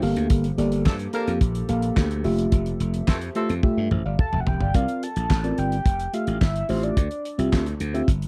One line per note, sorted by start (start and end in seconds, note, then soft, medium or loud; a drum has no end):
0.00 0.13 G1 loud
0.00 2.21 F3 medium
0.00 0.47 A#3 loud
0.00 2.23 A#3 medium
0.00 0.47 G4 medium
0.00 4.71 G4 medium
0.00 0.47 A4 medium
0.00 4.71 A4 medium
0.00 0.47 F5 loud
0.00 open hi-hat medium
0.16 0.27 D2 loud
0.16 closed hi-hat medium
0.30 0.51 G1 loud
0.30 kick loud
0.30 closed hi-hat loud
0.44 closed hi-hat medium
0.58 0.87 G1 loud
0.58 0.83 A#3 medium
0.58 0.83 G4 medium
0.58 0.84 A4 medium
0.58 0.84 D5 medium
0.58 closed hi-hat medium
0.72 closed hi-hat medium
0.86 1.06 G2 loud
0.86 0.95 F3 medium
0.86 0.95 A3 loud
0.86 0.95 D4 loud
0.86 0.95 A4 loud
0.86 kick loud
0.86 snare loud
0.86 clap medium
0.99 closed hi-hat medium
1.13 1.31 F3 loud
1.13 1.39 A#3 medium
1.13 1.32 A#3 loud
1.13 1.31 D4 medium
1.13 1.39 G4 medium
1.13 1.39 A4 medium
1.13 1.32 A#4 loud
1.13 1.39 F5 loud
1.13 closed hi-hat medium
1.27 1.38 F2 medium
1.27 closed hi-hat soft
1.41 1.62 A#1 loud
1.41 kick loud
1.41 closed hi-hat loud
1.55 closed hi-hat medium
1.68 1.90 A#1 medium
1.68 2.07 A#3 medium
1.68 2.07 G4 medium
1.68 2.07 A4 medium
1.68 2.07 F5 loud
1.68 closed hi-hat medium
1.82 closed hi-hat medium
1.97 2.26 D2 medium
1.97 kick loud
1.97 snare loud
1.97 clap medium
2.11 closed hi-hat medium
2.24 2.45 F1 loud
2.24 4.72 F3 medium
2.24 3.13 A3 medium
2.24 3.13 F4 medium
2.24 3.14 G4 medium
2.24 3.14 E5 loud
2.24 4.72 E5 medium
2.24 open hi-hat medium
2.38 closed hi-hat medium
2.52 2.73 F1 loud
2.52 kick loud
2.52 closed hi-hat loud
2.66 closed hi-hat medium
2.80 3.01 F1 medium
2.80 closed hi-hat medium
2.94 closed hi-hat medium
3.08 3.29 F2 loud
3.08 3.17 E3 loud
3.08 3.17 A3 medium
3.08 3.17 C4 medium
3.08 3.17 A4 loud
3.08 kick loud
3.08 snare loud
3.08 clap medium
3.21 closed hi-hat medium
3.35 3.53 E3 medium
3.35 3.48 A3 medium
3.35 3.53 A3 medium
3.35 3.53 C4 loud
3.35 3.48 F4 medium
3.35 3.49 G4 medium
3.35 3.53 A4 loud
3.35 3.49 E5 loud
3.35 closed hi-hat medium
3.50 3.60 F2 medium
3.50 closed hi-hat medium
3.63 3.89 A3 medium
3.63 3.89 F4 medium
3.63 3.89 G4 medium
3.63 3.89 E5 loud
3.63 kick loud
3.63 high tom medium
3.77 3.88 G2 medium
3.91 4.02 A1 loud
3.91 4.05 C5 medium
3.91 4.05 E5 medium
3.91 mid tom medium
4.05 4.16 G1 medium
4.05 4.19 D5 medium
4.05 4.19 F5 medium
4.19 4.33 F5 medium
4.19 4.32 A5 medium
4.19 4.42 A5 loud
4.19 kick loud
4.19 mid tom medium
4.33 4.43 F1 medium
4.33 4.60 E5 medium
4.33 4.59 G5 medium
4.33 mid tom medium
4.40 4.49 F#5 medium
4.47 4.57 E1 medium
4.47 4.77 G5 loud
4.47 floor tom loud
4.61 4.71 G1 medium
4.61 4.74 D5 medium
4.61 4.87 F5 medium
4.61 floor tom loud
4.74 4.85 C2 loud
4.74 5.06 C4 medium
4.74 5.06 F4 medium
4.74 5.07 A#4 medium
4.74 5.07 D5 medium
4.74 5.05 F5 loud
4.74 kick loud
4.74 closed hi-hat loud
4.88 closed hi-hat medium
5.03 5.60 A5 loud
5.03 closed hi-hat medium
5.16 5.27 A#1 medium
5.16 closed hi-hat medium
5.30 5.51 A1 medium
5.30 kick loud
5.30 snare loud
5.30 clap medium
5.44 5.76 C4 medium
5.44 5.76 F4 medium
5.44 5.76 A#4 medium
5.44 5.76 D5 medium
5.44 closed hi-hat medium
5.58 5.79 G1 medium
5.58 6.13 G5 loud
5.58 closed hi-hat medium
5.72 closed hi-hat soft
5.86 6.06 F1 medium
5.86 kick loud
5.86 closed hi-hat loud
6.00 closed hi-hat medium
6.13 6.39 A3 medium
6.13 6.39 F4 medium
6.13 6.39 G4 medium
6.13 6.39 E5 medium
6.13 6.40 F5 medium
6.13 closed hi-hat medium
6.27 6.38 A1 medium
6.27 closed hi-hat medium
6.41 6.62 G1 medium
6.41 6.71 E5 medium
6.41 kick loud
6.41 snare loud
6.41 clap medium
6.56 closed hi-hat medium
6.69 6.90 A1 medium
6.69 6.97 A3 medium
6.69 6.97 F4 medium
6.69 6.97 G4 medium
6.69 6.85 C5 medium
6.69 6.97 E5 medium
6.69 open hi-hat medium
6.83 7.39 D5 medium
6.83 closed hi-hat medium
6.97 7.07 D2 loud
6.97 kick loud
6.97 closed hi-hat loud
7.11 closed hi-hat medium
7.25 closed hi-hat medium
7.38 7.49 C2 medium
7.38 7.64 C4 medium
7.38 7.64 F4 medium
7.38 7.64 G4 medium
7.38 7.64 E5 loud
7.38 closed hi-hat medium
7.53 7.73 D2 loud
7.53 kick medium
7.53 snare loud
7.53 clap medium
7.66 closed hi-hat medium
7.80 8.01 D2 medium
7.80 closed hi-hat medium
7.94 8.08 C4 medium
7.94 8.08 F4 medium
7.94 8.08 G4 medium
7.94 8.08 E5 loud
7.94 closed hi-hat soft
8.08 8.28 G1 loud
8.08 kick loud
8.08 closed hi-hat medium
8.22 closed hi-hat medium